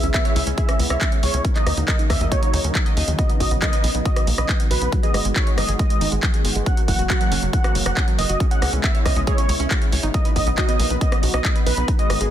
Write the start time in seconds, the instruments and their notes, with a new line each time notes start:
Already playing: analog synth pad C#3 G#3 B3 E4
0.03 analog synth bass C#2, synth arpeggio sound C#4, closed hi-hat
0.14 synth arpeggio sound B3, supersaw synth E5, kick, clap, closed hi-hat
0.25 synth arpeggio sound C#5, closed hi-hat
0.36 analog synth bass C#2, synth arpeggio sound C#4, open hi-hat
0.47 analog synth bass C#2, synth arpeggio sound C#4, closed hi-hat
0.58 synth arpeggio sound G#4, supersaw synth E5, kick, closed hi-hat
0.69 synth arpeggio sound C#4, cross-stick, closed hi-hat
0.79 analog synth bass C#2, synth arpeggio sound B3, open hi-hat
0.90 analog synth bass C#2, synth arpeggio sound C#5, supersaw synth E5, cross-stick, closed hi-hat
1.01 synth arpeggio sound C#4, kick, clap, closed hi-hat
1.12 synth arpeggio sound C#4, closed hi-hat
1.23 analog synth bass C#2, synth arpeggio sound G#4, supersaw synth C#5, open hi-hat
1.34 analog synth bass C#2, synth arpeggio sound C#4, closed hi-hat
1.45 analog synth pad C#3 F#3 A#3 D#4, synth arpeggio sound C#4, kick, closed hi-hat
1.55 synth arpeggio sound D#5, supersaw synth D#5, clap, closed hi-hat
1.66 analog synth bass D#2, synth arpeggio sound D#4, cross-stick, open hi-hat
1.77 analog synth bass D#2, synth arpeggio sound D#4, closed hi-hat
1.88 synth arpeggio sound A#4, supersaw synth D#5, kick, clap, closed hi-hat
1.99 synth arpeggio sound D#4, closed hi-hat
2.10 analog synth bass D#2, synth arpeggio sound C#4, supersaw synth E5, kick, cross-stick, open hi-hat
2.21 analog synth bass D#2, synth arpeggio sound D#5, closed hi-hat
2.32 synth arpeggio sound D#4, supersaw synth C#5, kick, closed hi-hat
2.43 synth arpeggio sound D#4, closed hi-hat
2.53 analog synth bass D#2, synth arpeggio sound D#4, open hi-hat
2.64 analog synth bass D#2, synth arpeggio sound C#4, closed hi-hat
2.75 synth arpeggio sound D#4, kick, clap, closed hi-hat
2.86 synth arpeggio sound D#5, closed hi-hat
2.97 analog synth bass D#2, synth arpeggio sound D#5, open hi-hat
3.08 analog synth bass D#2, synth arpeggio sound D#3, closed hi-hat
3.19 synth arpeggio sound B3, analog synth pad B3, supersaw synth D#5, kick, closed hi-hat
3.29 synth arpeggio sound B3, closed hi-hat
3.40 analog synth bass B1, synth arpeggio sound F#4, supersaw synth D#5, kick, open hi-hat
3.51 analog synth bass B1, synth arpeggio sound B3, closed hi-hat
3.62 synth arpeggio sound A#3, supersaw synth D#5, kick, clap, closed hi-hat
3.73 synth arpeggio sound B4, closed hi-hat
3.84 analog synth bass B1, synth arpeggio sound B3, open hi-hat
3.95 analog synth bass B1, synth arpeggio sound B3, closed hi-hat
4.05 synth arpeggio sound F#4, supersaw synth D#5, kick, closed hi-hat
4.16 synth arpeggio sound B3, cross-stick, closed hi-hat
4.27 analog synth bass B1, synth arpeggio sound A#3, open hi-hat
4.38 analog synth bass B1, synth arpeggio sound B4, supersaw synth D#5, cross-stick, closed hi-hat
4.49 synth arpeggio sound B3, kick, clap, closed hi-hat
4.60 synth arpeggio sound B3, closed hi-hat
4.71 analog synth bass B1, synth arpeggio sound F#4, supersaw synth B4, open hi-hat
4.82 analog synth bass B1, synth arpeggio sound B3, closed hi-hat
4.92 analog synth pad D#3 G#3 F#4, synth arpeggio sound F#3, kick, closed hi-hat
5.03 synth arpeggio sound G#4, supersaw synth D#5, closed hi-hat
5.14 analog synth bass G#1, synth arpeggio sound G#3, cross-stick, open hi-hat
5.25 analog synth bass G#1, synth arpeggio sound G#3, closed hi-hat
5.36 synth arpeggio sound D#4, supersaw synth C#5, kick, clap, closed hi-hat
5.47 synth arpeggio sound G#3, closed hi-hat
5.58 analog synth bass G#1, synth arpeggio sound F#3, supersaw synth D#5, cross-stick, open hi-hat
5.68 analog synth bass G#1, synth arpeggio sound G#4, closed hi-hat
5.79 synth arpeggio sound G#3, supersaw synth D#5, kick, closed hi-hat
5.90 synth arpeggio sound G#3, closed hi-hat
6.01 analog synth bass G#1, synth arpeggio sound D#4, open hi-hat
6.12 analog synth bass G#1, synth arpeggio sound G#3, closed hi-hat
6.23 synth arpeggio sound F#3, kick, clap, closed hi-hat
6.34 synth arpeggio sound G#4, closed hi-hat
6.45 analog synth bass G#1, synth arpeggio sound G#3, open hi-hat
6.56 analog synth bass G#1, synth arpeggio sound G#3, closed hi-hat
6.66 analog synth pad C#3 F#3 A#3, synth arpeggio sound C#4, supersaw synth F#5, kick, closed hi-hat
6.77 synth arpeggio sound F#3, closed hi-hat
6.88 analog synth bass F#1, synth arpeggio sound E3, supersaw synth F#5, kick, open hi-hat
6.99 analog synth bass F#1, synth arpeggio sound F#4, closed hi-hat
7.10 synth arpeggio sound F#3, supersaw synth F#5, kick, clap, closed hi-hat
7.21 synth arpeggio sound F#3, closed hi-hat
7.32 analog synth bass F#1, synth arpeggio sound C#4, open hi-hat
7.42 analog synth bass F#1, synth arpeggio sound F#3, closed hi-hat
7.53 synth arpeggio sound E3, supersaw synth F#5, kick, closed hi-hat
7.64 synth arpeggio sound F#4, cross-stick, closed hi-hat
7.75 analog synth bass F#1, synth arpeggio sound F#3, open hi-hat
7.86 analog synth bass F#1, synth arpeggio sound F#3, supersaw synth F#5, cross-stick, closed hi-hat
7.97 synth arpeggio sound C#4, kick, clap, closed hi-hat
8.08 synth arpeggio sound F#3, closed hi-hat
8.19 analog synth bass F#1, synth arpeggio sound E3, supersaw synth D#5, open hi-hat
8.29 analog synth bass F#1, synth arpeggio sound F#4, closed hi-hat
8.40 analog synth pad C#3 G#3 B3 E4, synth arpeggio sound C#4, kick, closed hi-hat
8.51 synth arpeggio sound C#4, supersaw synth F#5, closed hi-hat
8.62 analog synth bass C#2, synth arpeggio sound G#4, cross-stick, open hi-hat
8.73 analog synth bass C#2, synth arpeggio sound C#4, closed hi-hat
8.84 synth arpeggio sound B3, supersaw synth E5, kick, clap, closed hi-hat
8.95 synth arpeggio sound C#5, closed hi-hat
9.05 analog synth bass C#2, synth arpeggio sound C#4, supersaw synth D#5, kick, cross-stick, open hi-hat
9.16 analog synth bass C#2, synth arpeggio sound C#4, closed hi-hat
9.27 synth arpeggio sound G#4, supersaw synth C#5, kick, closed hi-hat
9.38 synth arpeggio sound C#4, closed hi-hat
9.49 analog synth bass C#2, synth arpeggio sound C#5, open hi-hat
9.60 analog synth bass C#2, synth arpeggio sound C#4, closed hi-hat
9.71 synth arpeggio sound F#4, kick, clap, closed hi-hat
9.82 synth arpeggio sound C#4, closed hi-hat
9.92 analog synth bass C#2, synth arpeggio sound C#5, open hi-hat
10.03 analog synth bass G#1, synth arpeggio sound D#4, closed hi-hat
10.14 analog synth pad F#3 D#4, synth arpeggio sound A#3, supersaw synth D#5, kick, closed hi-hat
10.25 synth arpeggio sound B4, closed hi-hat
10.36 analog synth bass B1, synth arpeggio sound B3, supersaw synth D#5, kick, open hi-hat
10.47 analog synth bass B1, synth arpeggio sound B3, closed hi-hat
10.58 synth arpeggio sound F#4, supersaw synth D#5, kick, clap, closed hi-hat
10.69 synth arpeggio sound B3, closed hi-hat
10.79 analog synth bass B1, synth arpeggio sound A#3, open hi-hat
10.90 analog synth bass B1, synth arpeggio sound B4, closed hi-hat
11.01 synth arpeggio sound B3, supersaw synth D#5, kick, closed hi-hat
11.12 synth arpeggio sound B3, cross-stick, closed hi-hat
11.23 analog synth bass B1, synth arpeggio sound F#4, open hi-hat
11.34 analog synth bass B1, synth arpeggio sound B3, supersaw synth D#5, cross-stick, closed hi-hat
11.45 synth arpeggio sound A#3, kick, clap, closed hi-hat
11.56 synth arpeggio sound B4, closed hi-hat
11.66 analog synth bass B1, synth arpeggio sound B3, supersaw synth B4, open hi-hat
11.77 analog synth bass B1, synth arpeggio sound B3, closed hi-hat
11.88 analog synth pad D#3 G#3 F#4, synth arpeggio sound D#4, kick, closed hi-hat
11.99 synth arpeggio sound G#3, supersaw synth D#5, closed hi-hat
12.10 analog synth bass G#1, synth arpeggio sound F#3, cross-stick, open hi-hat
12.21 analog synth bass G#1, synth arpeggio sound G#4, closed hi-hat